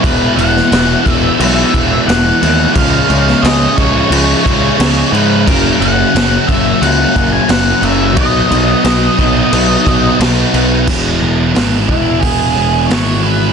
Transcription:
0.02 picked electric bass E1, overdriven electric guitar E2 B2, distorted electric guitar E3 G#3 B3 E4, lead electric guitar B4, kick, crash
0.36 picked electric bass E1, overdriven electric guitar E2 B2, distorted electric guitar E3 G#3 B3 E4, lead electric guitar F#5, crash
0.57 snare
0.71 picked electric bass E1, overdriven electric guitar E2 B2, distorted electric guitar E3 G#3 B3 E4, snare, crash
1.04 picked electric bass E1, overdriven electric guitar E2 B2, distorted electric guitar E3 G#3 B3 E4, kick, crash
1.10 lead electric guitar E5
1.38 picked electric bass B1, overdriven electric guitar E2 B2, distorted electric guitar E3 G#3 B3 E4, lead electric guitar E5, crash
1.73 picked electric bass E1, overdriven electric guitar E2 B2, distorted electric guitar E3 G#3 B3 E4, kick, crash
2.06 picked electric bass E1, overdriven electric guitar E2 B2, distorted electric guitar E3 G#3 B3 E4, lead electric guitar F#5, snare, crash
2.41 picked electric bass D#2, overdriven electric guitar E2 B2, distorted electric guitar E3 G#3 B3 E4, crash
2.74 picked electric bass C#2, distorted electric guitar C#3 F3 G#3 C#4, lead electric guitar F5, kick, crash
3.09 picked electric bass C#2, distorted electric guitar C#3 F3 G#3 C#4, crash
3.28 snare
3.42 picked electric bass C#2, distorted electric guitar C#3 F3 G#3 C#4, lead electric guitar D#5, snare, crash
3.76 picked electric bass C#2, distorted electric guitar C#3 F3 G#3 C#4, lead electric guitar C#5, kick, crash
4.10 picked electric bass C#2, distorted electric guitar C#3 F3 G#3 C#4, crash
4.45 picked electric bass C#2, distorted electric guitar C#3 F3 G#3 C#4, kick, crash
4.79 picked electric bass C#2, distorted electric guitar C#3 F3 G#3 C#4, snare, crash
5.12 picked electric bass G#2, distorted electric guitar C#3 F3 G#3 C#4, lead electric guitar B4, crash
5.46 picked electric bass F#1, distorted electric guitar F#2 C#3 F#3 A#3 C#4, lead electric guitar A#4, kick, crash
5.80 picked electric bass F#1, distorted electric guitar F#2 C#3 F#3 A#3 C#4, lead electric guitar F#5, crash
6.15 picked electric bass F#1, distorted electric guitar F#2 C#3 F#3 A#3 C#4, snare, crash
6.47 picked electric bass F#1, distorted electric guitar F#2 C#3 F#3 A#3 C#4, lead electric guitar E5, kick, crash
6.82 picked electric bass C#2, distorted electric guitar F#2 C#3 F#3 A#3 C#4, lead electric guitar F#5, crash
7.15 picked electric bass F#1, distorted electric guitar F#2 C#3 F#3 A#3 C#4, kick, crash
7.32 lead electric guitar G#5
7.49 picked electric bass F#1, distorted electric guitar F#2 C#3 F#3 A#3 C#4, lead electric guitar F#5, snare, crash
7.82 picked electric bass F#1, distorted electric guitar F#2 C#3 F#3 A#3 C#4, lead electric guitar E5, crash
8.15 picked electric bass B1, distorted electric guitar B2 F#3 B3 D#4, lead electric guitar D#5, kick, crash
8.49 picked electric bass B1, distorted electric guitar B2 F#3 B3 D#4, crash
8.84 picked electric bass B1, distorted electric guitar B2 F#3 B3 D#4, snare, crash
9.18 picked electric bass B1, distorted electric guitar B2 F#3 B3 D#4, kick, crash
9.51 picked electric bass B1, distorted electric guitar B2 F#3 B3 D#4, crash
9.86 picked electric bass B1, distorted electric guitar B2 F#3 B3 D#4, kick, crash
10.19 picked electric bass B1, distorted electric guitar B2 F#3 B3 D#4, snare, crash
10.53 picked electric bass B1, distorted electric guitar B2 F#3 B3 D#4, crash
10.87 picked electric bass E1, distorted electric guitar E3 G#3 B3 E4, kick, crash
11.22 picked electric bass E1
11.55 picked electric bass G#1, distorted electric guitar E3 G#3 B3 E4, snare, open hi-hat
11.88 picked electric bass E1, distorted electric guitar E3 G#3 B3 E4, lead electric guitar E4, kick
12.19 picked electric bass E1, lead electric guitar G#4, kick, open hi-hat
12.23 distorted electric guitar E3 G#3 B3 E4
12.57 picked electric bass E1
12.86 picked electric bass G#1, lead electric guitar C#5
12.90 distorted electric guitar E3 G#3 B3 E4, snare, open hi-hat
13.22 distorted electric guitar E3 G#3 B3, lead electric guitar B4
13.26 distorted electric guitar E4

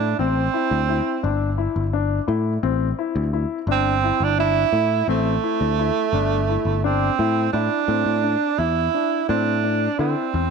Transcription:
Already playing: picked electric bass A2, tenor saxophone D4
0.19 picked electric bass A1, grand piano C4, tenor saxophone C4
0.54 grand piano E4
0.71 picked electric bass D2
0.89 grand piano E4
1.23 picked electric bass G1, grand piano D4
1.58 grand piano E4
1.76 picked electric bass G1
1.93 grand piano D4
2.28 picked electric bass A2, grand piano E4
2.63 picked electric bass A1, grand piano C4
2.99 grand piano E4
3.15 picked electric bass D2
3.33 grand piano E4
3.67 picked electric bass G1, grand piano D4
3.71 tenor saxophone C4
4.04 grand piano E4
4.20 picked electric bass G1, tenor saxophone D4
4.39 grand piano D4, tenor saxophone E4
4.73 picked electric bass A2, grand piano E4
5.08 picked electric bass A1, tenor saxophone A3, grand piano C4
5.43 grand piano E4
5.61 picked electric bass D2
5.79 grand piano E4
6.13 picked electric bass G1, grand piano D4
6.49 grand piano E4
6.65 picked electric bass G1
6.84 tenor saxophone C4, grand piano D4
7.19 picked electric bass A2, grand piano E4
7.53 picked electric bass A2, tenor saxophone D4, grand piano E4
7.88 picked electric bass A2, grand piano C4
8.06 picked electric bass A2
8.24 grand piano D4
8.58 picked electric bass E2, tenor saxophone E4, grand piano E4
8.94 grand piano D4
9.29 picked electric bass A2, grand piano C4, tenor saxophone D4
9.64 grand piano D4
9.99 picked electric bass D3, tenor saxophone C4, grand piano E4
10.34 picked electric bass E2, grand piano C4

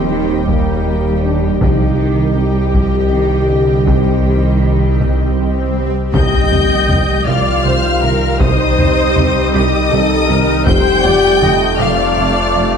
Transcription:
Already playing: sub bass D#1, double bass section D#2, tuba D#2, ambient pad D#3 G3 G4 G5, french horn section C4, viola section G4, violin section D#5 G5
0.11 cello section D#3, synth pluck D#4
0.47 synth pluck D#3, cello section G3, french horn section A#3, taiko
0.87 synth pluck D#4
1.23 french horn section D4
1.61 tuba C2, sub bass C2, double bass section C2, synth pluck C3, cello section F3, ambient pad G3 G4 D#5 G5, french horn section D#4, viola section G4, violin section D#5 G5, taiko
1.99 cello section D#3, synth pluck D#3
2.36 cello section G3, synth pluck C4
2.74 synth pluck C3, cello section F3, french horn section G4, taiko
3.12 cello section D#3, synth pluck C4
3.50 cello section D3
3.87 synth pluck C3, cello section D#3, french horn section C4, taiko, swell
4.26 synth pluck D#3
4.63 synth pluck C4
5.01 synth pluck C3, taiko
5.39 synth pluck C4
6.14 tuba C2, double bass section C2, sub bass C2, cello section C3, synth pluck C3, trombone section D#3 G3, ambient pad G3 C4 D#4 G4, french horn section G4, viola section D#5, violin section G5 G6, taiko, impact
6.52 double bass section C2, tuba C2, cello section C3, synth pluck C4, taiko low
6.89 double bass section C2, tuba C2, cello section C3, synth pluck C4, taiko low
7.27 double bass section C2, tuba C2, cello section C3, synth pluck C3, french horn section F4, viola section D5, violin section F5 F6
7.65 tuba C2, double bass section C2, cello section C3, synth pluck D#3, viola section C5
8.03 tuba C2, double bass section C2, cello section C3, synth pluck D#3, viola section A#4
8.40 double bass section C2, tuba C2, cello section C3, synth pluck C3, french horn section D#4, viola section C5, violin section D#5 D#6, taiko
8.78 tuba C2, double bass section C2, cello section C3, taiko low
9.16 double bass section C2, tuba C2, cello section C3, synth pluck C4, taiko low
9.53 tuba C2, double bass section C2, cello section C3, synth pluck C3, french horn section D#4, viola section G4, violin section D#5 D#6
9.91 tuba C2, double bass section C2, cello section C3, synth pluck D#3, viola section A4
10.29 double bass section C2, tuba C2, cello section C3, synth pluck D#3, viola section A#4
10.66 tuba F1, double bass section F1, sub bass F1, cello section F2, trombone section C3 A3, synth pluck F3, ambient pad A3 C4 C5 F5, french horn section G4, viola section C5, violin section G5 G6, taiko
11.05 double bass section F1, tuba F1, cello section F2, synth pluck F4, viola section D5, taiko low
11.42 double bass section F1, tuba F1, cello section F2, synth pluck F4, viola section D#5, taiko low
11.79 double bass section F1, tuba F1, cello section F2, synth pluck F3, french horn section F4, viola section D5, violin section F5 F6
12.18 double bass section F1, tuba F1, cello section F2, synth pluck A3
12.56 tuba F1, double bass section F1, cello section F2, synth pluck A3

